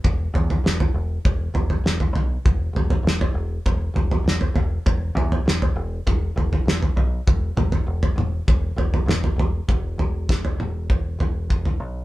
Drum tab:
SD |----o-------o---|----o-------o---|----o-------o---|------------o---|
T2 |----------------|----------------|----------------|--o---o-----o---|
FT |o-oo-o--o-oo-oo-|o-oo-o--o-oo-oo-|o-oo-o--o-oo-oo-|o-oo-o--o-oo-oo-|
BD |o-------o-------|o-------o-------|o-------o-------|o-------o-------|

SD |----o-----------|
T2 |------o---------|
FT |o-o--o--o-o--o--|
BD |o---o---o---o---|